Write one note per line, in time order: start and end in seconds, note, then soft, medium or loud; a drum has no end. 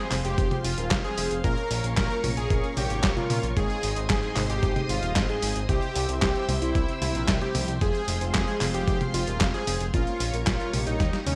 0.00 1.42 G#3 medium
0.00 0.16 G#4 loud
0.00 1.40 C5 medium
0.00 3.52 F5 medium
0.00 1.42 C6 medium
0.11 0.22 F1 medium
0.11 0.48 F3 loud
0.11 0.48 C4 medium
0.11 0.48 F4 medium
0.11 0.48 G#4 medium
0.11 0.48 C5 loud
0.11 clap medium
0.11 open hi-hat loud
0.11 high tom medium
0.25 0.36 F1 medium
0.25 0.56 G4 medium
0.25 closed hi-hat medium
0.38 0.49 F1 loud
0.38 kick loud
0.38 closed hi-hat medium
0.51 0.75 F3 medium
0.51 0.75 C4 medium
0.51 0.75 F4 medium
0.51 0.75 G#4 medium
0.51 0.75 C5 medium
0.51 closed hi-hat soft
0.51 high tom medium
0.64 0.75 F1 medium
0.64 0.96 F4 loud
0.64 open hi-hat loud
0.78 0.89 D#1 medium
0.78 1.01 F3 medium
0.78 1.01 C4 medium
0.78 1.01 F4 medium
0.78 1.01 G#4 medium
0.78 1.01 A#4 loud
0.78 closed hi-hat medium
0.91 1.02 F1 loud
0.91 kick loud
0.91 snare loud
0.91 clap medium
0.91 closed hi-hat medium
1.04 1.14 F3 medium
1.04 1.14 C4 medium
1.04 1.14 F4 medium
1.04 1.14 G#4 medium
1.04 1.36 G#4 medium
1.04 1.14 C5 medium
1.04 closed hi-hat soft
1.18 1.28 F1 medium
1.18 1.40 C4 loud
1.18 1.40 F4 medium
1.18 1.40 G#4 medium
1.18 1.40 C5 loud
1.18 open hi-hat loud
1.31 1.42 F1 medium
1.31 closed hi-hat medium
1.44 1.55 A#1 loud
1.44 1.64 A#2 medium
1.44 1.64 A#3 medium
1.44 1.64 C#4 medium
1.44 1.64 F4 medium
1.44 1.86 A#4 loud
1.44 1.64 A#4 loud
1.44 3.54 A#4 medium
1.44 3.54 C#5 medium
1.44 3.54 C#6 medium
1.44 kick loud
1.44 closed hi-hat soft
1.57 closed hi-hat soft
1.71 1.82 A#1 loud
1.71 open hi-hat loud
1.84 1.95 A#1 medium
1.84 2.21 A#2 medium
1.84 2.21 A#3 medium
1.84 2.21 C#4 medium
1.84 2.21 F4 medium
1.84 2.21 A#4 loud
1.84 closed hi-hat medium
1.97 2.08 A#1 loud
1.97 2.29 A#4 loud
1.97 kick loud
1.97 snare loud
1.97 clap medium
1.97 closed hi-hat soft
2.11 closed hi-hat soft
2.24 2.35 A#1 loud
2.24 2.60 A#2 loud
2.24 2.60 A#3 medium
2.24 2.60 C#4 medium
2.24 2.60 F4 medium
2.24 2.60 A#4 loud
2.24 open hi-hat loud
2.24 high tom medium
2.37 2.48 A#1 medium
2.37 2.68 G#4 medium
2.37 closed hi-hat medium
2.50 2.61 A#1 loud
2.50 kick loud
2.50 closed hi-hat soft
2.64 2.87 A#2 medium
2.64 2.87 A#3 medium
2.64 2.87 C#4 medium
2.64 2.87 F4 medium
2.64 2.87 A#4 medium
2.64 closed hi-hat soft
2.77 2.88 A#1 medium
2.77 3.08 G4 loud
2.77 open hi-hat loud
2.77 high tom medium
2.90 3.01 G#1 medium
2.90 3.14 A#2 medium
2.90 3.14 A#3 medium
2.90 3.14 C#4 medium
2.90 3.14 F4 medium
2.90 3.14 C#5 medium
2.90 closed hi-hat medium
3.04 3.14 A#1 loud
3.04 kick loud
3.04 snare loud
3.04 clap medium
3.04 closed hi-hat medium
3.17 3.27 A#2 loud
3.17 3.27 A#3 medium
3.17 3.27 C#4 medium
3.17 3.27 F4 medium
3.17 3.48 F4 loud
3.17 3.27 A#4 loud
3.17 closed hi-hat soft
3.17 high tom medium
3.30 3.41 A#2 loud
3.30 3.53 A#3 loud
3.30 3.53 C#4 loud
3.30 3.53 F4 loud
3.30 3.53 A#4 loud
3.30 open hi-hat loud
3.30 high tom medium
3.43 3.54 A#1 medium
3.43 closed hi-hat soft
3.57 3.68 G#1 loud
3.57 3.76 G#2 medium
3.57 3.76 G#3 medium
3.57 3.76 C4 medium
3.57 3.76 D#4 medium
3.57 3.76 G#4 loud
3.57 3.98 G#4 loud
3.57 9.90 C5 medium
3.57 5.67 D#5 medium
3.57 5.67 C6 medium
3.57 5.67 D#6 medium
3.57 kick loud
3.57 closed hi-hat soft
3.70 closed hi-hat soft
3.83 3.94 G#1 loud
3.83 open hi-hat loud
3.96 4.07 G#1 medium
3.96 4.33 G#2 medium
3.96 4.33 G#3 medium
3.96 4.33 C4 medium
3.96 4.33 D#4 medium
3.96 4.33 G#4 medium
3.96 closed hi-hat medium
4.10 4.21 G#1 loud
4.10 4.41 G#4 loud
4.10 kick loud
4.10 snare loud
4.10 clap medium
4.10 closed hi-hat soft
4.23 closed hi-hat soft
4.36 4.47 G#1 medium
4.36 4.73 G#2 loud
4.36 4.73 G#3 medium
4.36 4.73 C4 loud
4.36 4.73 D#4 medium
4.36 4.73 G#4 loud
4.36 clap medium
4.36 open hi-hat loud
4.36 high tom medium
4.50 4.60 G#1 medium
4.50 4.81 G4 loud
4.50 closed hi-hat medium
4.63 4.74 G#1 loud
4.63 kick loud
4.63 closed hi-hat soft
4.76 4.99 G#2 medium
4.76 4.99 G#3 medium
4.76 4.99 C4 medium
4.76 4.99 D#4 medium
4.76 4.99 G#4 medium
4.76 closed hi-hat soft
4.76 high tom medium
4.89 5.00 G#1 medium
4.89 5.21 F4 loud
4.89 open hi-hat loud
5.03 5.14 D#1 medium
5.03 5.26 G#2 medium
5.03 5.26 G#3 medium
5.03 5.26 C4 medium
5.03 5.26 D#4 medium
5.03 5.26 F4 loud
5.03 closed hi-hat soft
5.16 5.27 G#1 loud
5.16 kick loud
5.16 snare loud
5.16 clap medium
5.16 closed hi-hat medium
5.29 5.39 G#2 medium
5.29 5.39 G#3 medium
5.29 5.39 C4 medium
5.29 5.39 D#4 medium
5.29 5.39 G#4 medium
5.29 5.61 G#4 medium
5.29 closed hi-hat soft
5.42 5.53 G#1 medium
5.42 5.65 G#3 medium
5.42 5.65 C4 medium
5.42 5.65 D#4 medium
5.42 5.65 G#4 loud
5.42 open hi-hat loud
5.56 5.67 G#1 medium
5.56 closed hi-hat medium
5.69 5.80 C2 medium
5.69 5.89 C3 medium
5.69 5.89 C4 medium
5.69 5.89 E4 medium
5.69 6.11 G4 loud
5.69 5.89 G4 medium
5.69 5.89 C5 loud
5.69 7.79 E5 medium
5.69 7.79 G5 medium
5.69 7.79 E6 medium
5.69 kick loud
5.69 closed hi-hat medium
5.82 closed hi-hat soft
5.96 6.06 C2 loud
5.96 open hi-hat loud
6.09 6.20 C2 medium
6.09 6.45 C3 medium
6.09 6.45 C4 medium
6.09 6.45 E4 medium
6.09 6.45 G4 medium
6.09 6.45 C5 loud
6.09 closed hi-hat medium
6.22 6.33 C2 loud
6.22 6.53 G4 medium
6.22 kick loud
6.22 snare loud
6.22 clap medium
6.22 closed hi-hat medium
6.35 closed hi-hat soft
6.49 6.60 C2 medium
6.49 6.85 C3 loud
6.49 6.85 C4 medium
6.49 6.85 E4 loud
6.49 6.85 G4 loud
6.49 6.85 C5 loud
6.49 open hi-hat loud
6.49 high tom medium
6.62 6.73 C2 medium
6.62 6.93 E4 medium
6.62 closed hi-hat medium
6.75 6.86 C2 loud
6.75 kick loud
6.75 closed hi-hat medium
6.88 7.12 C3 medium
6.88 7.12 C4 medium
6.88 7.12 E4 medium
6.88 7.12 G4 medium
6.88 7.12 C5 medium
6.88 closed hi-hat soft
7.02 7.13 C2 loud
7.02 7.33 E4 loud
7.02 open hi-hat loud
7.02 high tom medium
7.15 7.26 A#1 medium
7.15 7.38 C3 loud
7.15 7.38 C4 medium
7.15 7.38 E4 medium
7.15 7.38 G4 medium
7.15 7.38 A#4 loud
7.15 closed hi-hat medium
7.28 7.39 C2 loud
7.28 kick loud
7.28 snare loud
7.28 clap medium
7.28 closed hi-hat medium
7.41 7.52 C3 medium
7.41 7.52 C4 medium
7.41 7.52 E4 medium
7.41 7.73 G4 medium
7.41 7.52 G4 medium
7.41 7.52 C5 medium
7.41 closed hi-hat soft
7.41 high tom medium
7.55 7.66 C2 medium
7.55 7.77 F3 medium
7.55 7.77 C4 medium
7.55 7.77 E4 medium
7.55 7.77 G4 medium
7.55 7.77 C5 loud
7.55 open hi-hat loud
7.55 high tom medium
7.68 7.79 C2 medium
7.68 closed hi-hat medium
7.81 7.92 F1 loud
7.81 8.01 F3 medium
7.81 9.92 G#3 medium
7.81 8.01 C4 medium
7.81 8.01 F4 medium
7.81 8.23 G#4 loud
7.81 8.01 G#4 medium
7.81 8.01 C5 loud
7.81 10.97 F5 medium
7.81 9.92 C6 medium
7.81 kick loud
7.81 closed hi-hat medium
7.95 closed hi-hat soft
8.08 8.19 F1 loud
8.08 open hi-hat loud
8.21 8.32 F1 medium
8.21 8.58 F3 medium
8.21 8.58 C4 medium
8.21 8.58 F4 medium
8.21 8.58 G#4 medium
8.21 8.58 C5 loud
8.21 closed hi-hat medium
8.34 8.45 F1 loud
8.34 8.66 G#4 loud
8.34 kick loud
8.34 snare loud
8.34 clap medium
8.34 closed hi-hat medium
8.48 closed hi-hat soft
8.61 8.72 F1 medium
8.61 8.98 F3 loud
8.61 8.98 C4 medium
8.61 8.98 F4 loud
8.61 8.98 G#4 medium
8.61 8.98 C5 loud
8.61 clap medium
8.61 open hi-hat loud
8.61 high tom medium
8.74 8.85 F1 medium
8.74 9.06 G4 loud
8.74 closed hi-hat medium
8.88 8.98 F1 loud
8.88 kick loud
8.88 closed hi-hat medium
9.01 9.24 F3 medium
9.01 9.24 C4 medium
9.01 9.24 F4 medium
9.01 9.24 G#4 medium
9.01 9.24 C5 medium
9.01 closed hi-hat soft
9.01 high tom medium
9.14 9.25 F1 loud
9.14 9.45 F4 loud
9.14 open hi-hat loud
9.27 9.38 D#1 medium
9.27 9.51 F3 loud
9.27 9.51 C4 medium
9.27 9.51 F4 medium
9.27 9.51 G#4 medium
9.27 9.51 A#4 loud
9.27 closed hi-hat medium
9.41 9.52 F1 loud
9.41 kick loud
9.41 snare loud
9.41 clap medium
9.41 closed hi-hat medium
9.54 9.64 F3 medium
9.54 9.64 C4 medium
9.54 9.64 F4 medium
9.54 9.85 G#4 loud
9.54 9.64 G#4 medium
9.54 9.64 C5 medium
9.54 closed hi-hat soft
9.67 9.78 F1 medium
9.67 9.90 C4 loud
9.67 9.90 F4 medium
9.67 9.90 G#4 medium
9.67 9.90 C5 loud
9.67 open hi-hat loud
9.81 9.91 F1 medium
9.81 closed hi-hat medium
9.94 10.05 A#1 loud
9.94 10.14 A#2 medium
9.94 10.14 A#3 medium
9.94 10.14 C#4 medium
9.94 10.14 F4 medium
9.94 10.35 F4 loud
9.94 11.35 A#4 medium
9.94 10.14 A#4 loud
9.94 10.99 C#5 medium
9.94 10.99 C#6 medium
9.94 kick loud
9.94 closed hi-hat medium
10.07 closed hi-hat soft
10.20 10.31 A#1 loud
10.20 open hi-hat loud
10.34 10.45 A#1 medium
10.34 10.70 A#2 medium
10.34 10.70 A#3 medium
10.34 10.70 C#4 medium
10.34 10.70 F4 medium
10.34 10.70 A#4 loud
10.34 closed hi-hat medium
10.47 10.58 A#1 loud
10.47 10.78 F4 medium
10.47 kick loud
10.47 snare loud
10.47 clap medium
10.47 closed hi-hat medium
10.60 closed hi-hat soft
10.73 10.84 A#1 medium
10.73 11.10 G3 loud
10.73 11.10 A#3 loud
10.73 11.10 D#4 loud
10.73 11.10 G4 loud
10.73 open hi-hat loud
10.73 high tom medium
10.87 10.98 A#1 medium
10.87 11.18 D#4 loud
10.87 closed hi-hat medium
11.00 11.11 D#2 loud
11.00 11.35 D#5 medium
11.00 11.35 G5 medium
11.00 11.35 D#6 medium
11.00 kick loud
11.00 snare medium
11.00 closed hi-hat medium
11.13 11.35 G3 medium
11.13 11.35 A#3 medium
11.13 11.35 D#4 medium
11.13 11.35 G4 medium
11.13 snare medium
11.13 closed hi-hat soft
11.26 11.35 D#2 medium
11.26 11.35 C#4 loud
11.26 open hi-hat loud
11.26 high tom medium